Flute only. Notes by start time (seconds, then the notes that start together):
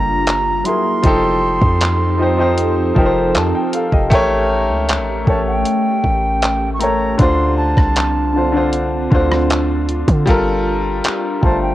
Already playing: A#5
0.66 C6
5.28 A5
5.47 G5
6.74 C#6
6.80 A#5
7.19 C6
7.58 A5
11.43 A5
11.62 G5